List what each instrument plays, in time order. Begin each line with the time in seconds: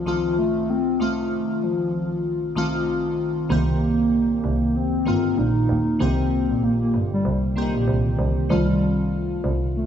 Already playing: synth keys C2 D#3 A3 C4 F4, soft synth lead F3
0.06 synth keys C2 D#3 A3 C4 F4
0.38 soft synth lead A3
0.69 soft synth lead C4
0.99 synth keys C2 D#3 A3 C4 F4, soft synth lead A3
1.63 soft synth lead F3
2.55 synth keys C2 D#3 A3 C4 F4
3.49 double bass C2, synth keys D#3 A#3 C4 G4, soft synth lead A#3
4.44 double bass C2
4.76 soft synth lead C4
5.05 double bass G1, synth keys D#3 A#3 C4 F4
5.38 double bass A#1, soft synth lead D#4
5.69 double bass D#2
5.99 double bass C2, synth keys D#3 A#3 C4 G4, soft synth lead C4
6.50 double bass A#1
6.63 soft synth lead A#3
6.82 soft synth lead A#3
6.94 double bass G1
7.13 soft synth lead G3
7.25 double bass C2
7.56 synth keys D3 A#3 C4 G4
7.62 synth keys D#3
7.75 double bass A#1
7.88 double bass C2
8.19 double bass C2
8.49 double bass C2, synth keys D#3 A3 C4 F4, soft synth lead G3
9.44 double bass C2
9.76 soft synth lead A3